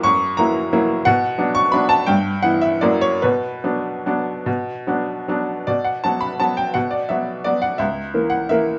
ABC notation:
X:1
M:3/4
L:1/8
Q:1/4=168
K:Bm
V:1 name="Upright piano"
c'2 ^a3 z | f3 c' b a | g2 f e d c | B6- |
B4- B z | d f a b a g | f d e2 d f | e3 f e2 |]
V:2 name="Upright piano"
F,,2 [F,^A,E]2 [F,A,E]2 | B,,2 [F,B,D]2 [F,B,D]2 | G,,2 [E,B,E]2 [F,,F,^A,E]2 | B,,2 [F,B,D]2 [F,B,D]2 |
B,,2 [F,B,D]2 [F,B,D]2 | B,,2 [F,B,F]2 [F,B,F]2 | B,,2 [F,B,F]2 [F,B,F]2 | C,,2 [E,^A,^A]2 [E,A,A]2 |]